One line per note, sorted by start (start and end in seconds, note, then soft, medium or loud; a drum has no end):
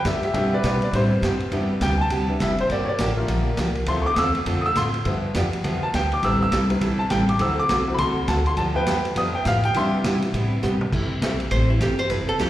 0.05 0.34 G2 loud
0.05 0.16 D3 medium
0.05 0.16 F3 medium
0.05 0.16 B3 medium
0.05 0.16 D4 medium
0.05 0.22 G4 medium
0.05 0.16 G4 medium
0.05 0.23 E5 medium
0.05 kick soft
0.05 snare medium
0.05 hi-hat pedal medium
0.05 ride medium
0.23 0.34 G4 medium
0.23 0.34 E5 medium
0.23 ride soft
0.34 1.48 B2 medium
0.34 0.54 C3 medium
0.34 0.63 C3 medium
0.34 0.54 G3 medium
0.34 0.55 B3 medium
0.34 0.92 D4 soft
0.34 0.55 E4 medium
0.34 0.93 E4 medium
0.34 0.52 G4 medium
0.34 0.55 G4 medium
0.34 0.53 E5 medium
0.34 kick soft
0.34 ride medium
0.54 0.63 B4 medium
0.54 0.64 D5 medium
0.63 0.92 B2 medium
0.63 0.75 C3 medium
0.63 0.75 G3 medium
0.63 0.75 B3 medium
0.63 0.75 E4 medium
0.63 0.76 G4 medium
0.63 0.81 B4 medium
0.63 0.83 D5 medium
0.63 kick soft
0.63 snare medium
0.63 hi-hat pedal medium
0.63 ride medium
0.82 0.93 B4 medium
0.82 0.94 D5 medium
0.82 ride soft
0.93 1.22 A2 loud
0.93 1.13 C3 medium
0.93 1.13 G3 medium
0.93 1.10 B3 soft
0.93 1.14 B3 medium
0.93 1.10 D4 soft
0.93 1.10 E4 medium
0.93 1.14 E4 medium
0.93 1.14 G4 medium
0.93 1.52 C5 loud
0.93 kick soft
0.93 ride medium
1.22 1.51 G2 loud
1.22 1.34 C3 medium
1.22 1.34 G3 medium
1.22 1.34 B3 medium
1.22 1.34 E4 medium
1.22 1.34 G4 medium
1.22 kick soft
1.22 snare medium
1.22 hi-hat pedal medium
1.22 ride medium
1.40 ride soft
1.52 1.81 E2 medium
1.52 1.72 C3 medium
1.52 1.72 G3 medium
1.52 2.28 B3 medium
1.52 1.72 B3 medium
1.52 2.28 D4 soft
1.52 1.72 E4 medium
1.52 2.29 E4 medium
1.52 1.73 G4 medium
1.52 kick soft
1.52 ride medium
1.81 2.10 D2 medium
1.81 1.93 C3 medium
1.81 1.93 G3 medium
1.81 1.93 B3 medium
1.81 1.93 E4 medium
1.81 1.93 G4 medium
1.81 2.00 G5 loud
1.81 kick soft
1.81 snare medium
1.81 hi-hat pedal medium
1.81 ride medium
1.97 1.99 G#5 medium
1.97 2.40 A5 loud
2.10 2.40 C2 loud
2.10 2.31 C3 medium
2.10 2.31 G3 medium
2.10 2.31 B3 medium
2.10 2.31 E4 medium
2.10 2.31 G4 medium
2.10 kick soft
2.10 ride medium
2.29 2.39 B3 soft
2.29 2.40 D4 soft
2.29 2.40 E4 medium
2.40 2.69 F1 medium
2.40 2.52 C3 medium
2.40 2.52 G3 medium
2.40 2.52 B3 medium
2.40 2.52 E4 medium
2.40 2.52 G4 medium
2.40 2.59 E5 medium
2.40 kick soft
2.40 snare medium
2.40 hi-hat pedal medium
2.40 ride medium
2.58 2.71 C5 loud
2.58 ride soft
2.69 2.87 G1 medium
2.69 2.90 D3 medium
2.69 2.90 F3 medium
2.69 2.90 A#3 medium
2.69 2.91 D4 medium
2.69 2.91 G4 medium
2.69 2.88 D5 medium
2.69 kick soft
2.69 ride medium
2.85 2.86 C#5 medium
2.85 muted upright bass stroke soft
2.89 3.74 D5 medium
2.98 3.28 A1 medium
2.98 3.11 D3 medium
2.98 3.11 F3 medium
2.98 3.11 A#3 medium
2.98 3.11 D4 medium
2.98 3.11 G4 medium
2.98 kick soft
2.98 snare medium
2.98 hi-hat pedal medium
2.98 ride medium
3.16 3.83 A3 medium
3.16 3.84 A#3 medium
3.16 3.84 F4 medium
3.28 3.57 A#1 medium
3.28 3.48 D3 medium
3.28 3.49 F3 medium
3.28 3.49 A#3 medium
3.28 3.49 D4 medium
3.28 3.49 G4 medium
3.28 kick soft
3.28 ride medium
3.57 3.87 C2 medium
3.57 3.69 D3 medium
3.57 3.69 F3 medium
3.57 3.69 A#3 medium
3.57 3.70 D4 medium
3.57 3.70 G4 medium
3.57 kick soft
3.57 snare medium
3.57 hi-hat pedal medium
3.57 ride medium
3.75 ride soft
3.86 4.16 D2 medium
3.86 4.07 D3 medium
3.86 4.09 F3 medium
3.86 4.08 A3 medium
3.86 4.09 C4 soft
3.86 4.08 C4 medium
3.86 4.09 E4 medium
3.86 4.08 F4 medium
3.86 4.08 A4 medium
3.86 4.06 C6 loud
3.86 kick soft
3.86 ride medium
4.02 4.04 C#6 medium
4.06 4.17 D6 loud
4.14 4.45 E2 medium
4.14 4.28 D3 medium
4.14 4.28 A3 medium
4.14 4.29 C4 medium
4.14 4.16 D#6 medium
4.14 kick soft
4.14 snare medium
4.14 hi-hat pedal medium
4.14 ride medium
4.18 4.29 F4 medium
4.18 4.29 A4 medium
4.18 4.35 E6 loud
4.35 ride medium
4.46 4.75 F2 loud
4.46 4.66 D3 medium
4.46 4.66 A3 medium
4.46 4.66 C4 medium
4.46 4.67 F4 medium
4.46 4.67 A4 medium
4.46 kick soft
4.46 ride medium
4.61 4.63 D#6 medium
4.66 4.76 E6 loud
4.75 5.04 A2 medium
4.75 4.87 D3 medium
4.75 4.87 A3 medium
4.75 4.87 C4 medium
4.75 4.87 F4 medium
4.75 4.88 A4 medium
4.75 5.05 C6 loud
4.75 kick soft
4.75 snare medium
4.75 hi-hat pedal medium
4.75 ride medium
4.94 ride soft
5.05 5.34 G2 medium
5.05 5.25 D3 medium
5.05 5.63 F3 soft
5.05 5.25 F3 medium
5.05 5.63 A3 medium
5.05 5.25 B3 medium
5.05 5.64 B3 medium
5.05 5.26 D4 medium
5.05 5.26 G4 medium
5.05 kick soft
5.05 ride medium
5.34 5.63 F2 medium
5.34 5.46 D3 medium
5.34 5.46 F3 medium
5.34 5.46 B3 medium
5.34 5.46 D4 medium
5.34 5.46 G4 medium
5.34 kick soft
5.34 snare medium
5.34 hi-hat pedal medium
5.34 ride medium
5.53 ride medium
5.64 5.93 E2 medium
5.64 5.84 D3 medium
5.64 5.84 F3 medium
5.64 5.81 F3 soft
5.64 5.81 A3 soft
5.64 5.84 B3 medium
5.64 5.81 B3 medium
5.64 5.84 D4 medium
5.64 5.84 G4 medium
5.64 kick soft
5.64 ride medium
5.83 5.94 A5 medium
5.94 6.22 D2 loud
5.94 6.05 D3 medium
5.94 6.05 F3 medium
5.94 6.05 B3 medium
5.94 6.05 D4 medium
5.94 6.05 G4 medium
5.94 6.12 G5 medium
5.94 kick soft
5.94 snare medium
5.94 hi-hat pedal soft
5.94 ride medium
6.12 6.23 D6 medium
6.12 ride soft
6.23 6.51 A1 medium
6.23 6.44 C3 medium
6.23 6.43 E3 medium
6.23 6.43 G3 medium
6.23 6.45 G3 soft
6.23 6.45 B3 medium
6.23 6.43 C4 medium
6.23 6.43 E4 medium
6.23 6.43 A4 medium
6.23 6.41 E6 medium
6.23 kick soft
6.23 ride medium
6.42 6.70 E6 loud
6.52 6.81 C2 medium
6.52 6.63 E3 medium
6.52 6.63 G3 medium
6.52 6.64 C4 medium
6.52 6.64 E4 medium
6.52 6.64 A4 medium
6.52 kick soft
6.52 snare medium
6.52 hi-hat pedal medium
6.52 ride medium
6.69 6.80 C3 soft
6.69 6.80 G3 soft
6.69 6.80 B3 medium
6.69 ride medium
6.81 7.10 B1 medium
6.81 7.01 E3 medium
6.81 7.01 G3 medium
6.81 7.02 C4 medium
6.81 7.02 E4 medium
6.81 7.02 A4 medium
6.81 kick soft
6.81 ride medium
6.99 7.10 A5 medium
7.10 7.39 A1 medium
7.10 7.22 E3 medium
7.10 7.22 G3 medium
7.10 7.22 C4 medium
7.10 7.22 E4 medium
7.10 7.22 A4 medium
7.10 7.28 G5 medium
7.10 kick soft
7.10 snare medium
7.10 hi-hat pedal soft
7.10 ride medium
7.29 7.40 D6 medium
7.29 ride medium
7.39 7.69 D2 medium
7.39 7.60 D3 medium
7.39 7.61 E3 medium
7.39 7.62 F#3 soft
7.39 7.60 A3 medium
7.39 7.60 C4 medium
7.39 7.62 C4 medium
7.39 7.60 F#4 medium
7.39 7.60 A4 medium
7.39 7.59 E6 medium
7.39 kick soft
7.39 ride medium
7.59 7.87 D6 loud
7.69 7.98 B1 medium
7.69 7.81 D3 medium
7.69 7.81 A3 medium
7.69 7.81 C4 medium
7.69 7.81 F#4 medium
7.69 7.81 A4 medium
7.69 kick soft
7.69 snare medium
7.69 hi-hat pedal medium
7.69 ride medium
7.87 7.97 E3 soft
7.87 7.98 F#3 medium
7.87 7.98 C4 medium
7.94 8.19 D3 medium
7.94 7.97 B5 medium
7.94 kick soft
7.94 ride medium
7.99 8.16 C2 loud
7.99 8.19 A3 medium
7.99 8.19 C4 medium
7.99 8.19 F#4 medium
7.99 8.19 A4 medium
7.99 8.27 C6 loud
8.17 muted upright bass stroke soft
8.28 8.56 D2 loud
8.28 8.39 D3 medium
8.28 8.39 A3 medium
8.28 8.39 C4 medium
8.28 8.40 F#4 medium
8.28 8.40 A4 medium
8.28 8.46 A5 medium
8.28 kick soft
8.28 snare medium
8.28 hi-hat pedal medium
8.28 ride medium
8.46 8.58 C6 medium
8.46 ride soft
8.57 8.86 G2 medium
8.57 8.77 D3 medium
8.57 8.77 F3 medium
8.57 8.78 B3 medium
8.57 8.78 D4 medium
8.57 8.78 G4 medium
8.57 8.75 A5 medium
8.57 kick soft
8.57 ride medium
8.74 9.14 F3 medium
8.74 9.15 A3 medium
8.74 9.16 B3 medium
8.74 9.03 B4 medium
8.74 9.04 G5 medium
8.86 9.15 E2 medium
8.86 8.98 D3 medium
8.86 8.98 F3 medium
8.86 8.98 B3 loud
8.86 8.98 D4 loud
8.86 8.98 G4 medium
8.86 kick soft
8.86 snare medium
8.86 hi-hat pedal medium
8.86 ride medium
9.05 ride medium
9.16 9.45 F2 loud
9.16 9.36 D3 medium
9.16 9.32 F3 soft
9.16 9.37 F3 medium
9.16 9.33 A3 soft
9.16 9.37 B3 medium
9.16 9.33 B3 medium
9.16 9.37 D4 medium
9.16 9.37 G4 medium
9.16 9.35 D#6 loud
9.16 kick soft
9.16 ride medium
9.35 9.46 G5 medium
9.43 9.74 A2 loud
9.43 9.57 D3 medium
9.43 9.57 F3 medium
9.43 9.57 B3 medium
9.43 9.57 D4 medium
9.43 9.57 G4 medium
9.43 9.45 E5 medium
9.43 kick soft
9.43 snare medium
9.43 hi-hat pedal medium
9.43 ride medium
9.47 9.64 F5 loud
9.63 9.75 G5 loud
9.63 ride soft
9.74 10.03 C3 medium
9.74 9.95 C3 medium
9.74 10.89 E3 medium
9.74 9.95 G3 medium
9.74 9.95 B3 medium
9.74 10.89 B3 soft
9.74 10.89 D4 medium
9.74 9.96 E4 medium
9.74 9.96 G4 medium
9.74 10.31 E5 medium
9.74 10.33 C6 loud
9.74 kick soft
9.74 ride medium
10.04 10.33 B2 loud
10.04 10.16 C3 medium
10.04 10.16 G3 medium
10.04 10.16 B3 medium
10.04 10.16 E4 loud
10.04 10.16 G4 medium
10.04 kick soft
10.04 snare medium
10.04 hi-hat pedal medium
10.04 ride medium
10.22 ride medium
10.34 10.62 A2 loud
10.34 10.54 C3 medium
10.34 10.54 G3 medium
10.34 10.54 B3 medium
10.34 10.54 E4 medium
10.34 10.55 G4 medium
10.34 kick soft
10.34 ride medium
10.63 10.92 G2 loud
10.63 10.74 C3 medium
10.63 10.74 G3 medium
10.63 10.74 B3 medium
10.63 10.74 E4 medium
10.63 10.74 G4 medium
10.63 hi-hat pedal medium
10.63 mid tom soft
10.81 mid tom medium
10.92 11.21 C2 medium
10.92 11.13 C3 medium
10.92 11.13 E3 medium
10.92 11.13 A3 medium
10.92 11.13 E4 medium
10.92 11.13 G4 medium
10.92 kick medium
10.92 crash medium
11.22 11.50 B1 medium
11.22 11.33 C3 medium
11.22 11.34 E3 medium
11.22 11.38 G3 medium
11.22 11.39 A3 medium
11.22 11.34 A3 medium
11.22 11.39 C4 medium
11.22 11.39 E4 medium
11.22 11.34 E4 medium
11.22 11.39 G4 medium
11.22 11.34 G4 medium
11.22 kick soft
11.22 snare medium
11.22 hi-hat pedal medium
11.22 ride medium
11.40 ride medium
11.51 11.80 A1 medium
11.51 11.72 C3 medium
11.51 11.72 E3 medium
11.51 11.72 A3 medium
11.51 11.72 E4 medium
11.51 11.72 G4 medium
11.51 11.69 C5 medium
11.51 kick soft
11.51 ride medium
11.70 11.81 E4 soft
11.80 12.09 G1 medium
11.80 11.92 C3 medium
11.80 11.92 E3 medium
11.80 11.92 A3 medium
11.80 11.93 E4 medium
11.80 11.99 G4 medium
11.80 11.93 G4 medium
11.80 kick soft
11.80 snare medium
11.80 hi-hat pedal medium
11.80 ride medium
11.98 12.10 C5 loud
11.98 ride soft
12.10 12.39 F1 medium
12.10 12.30 F3 medium
12.10 12.30 C4 medium
12.10 12.30 E4 medium
12.10 12.31 A4 medium
12.10 12.28 B4 medium
12.10 kick soft
12.10 ride medium
12.29 12.39 A4 loud
12.39 12.50 C2 medium
12.39 12.50 F3 medium
12.39 12.50 C4 medium
12.39 12.50 E4 medium
12.39 12.50 G4 medium
12.39 12.50 A4 medium
12.39 kick soft
12.39 snare medium
12.39 hi-hat pedal medium
12.39 ride medium